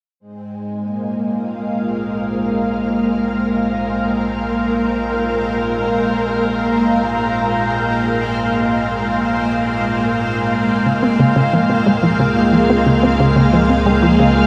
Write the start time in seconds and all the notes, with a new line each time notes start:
0.20 A#1 G#3 C4 C5
0.79 A#3
1.34 F5
1.72 A#4
10.86 C#2 C#3
11.03 C4
11.20 C#3
11.36 C#3
11.53 F3
11.70 C4
11.86 G#3
12.03 F3
12.20 C#3
12.28 G#4
12.53 F3
12.70 C4
12.86 C#3
13.03 C4
13.20 C#3
13.36 C#3
13.53 F3
13.70 C4
13.86 G#3
14.03 F3
14.20 C#3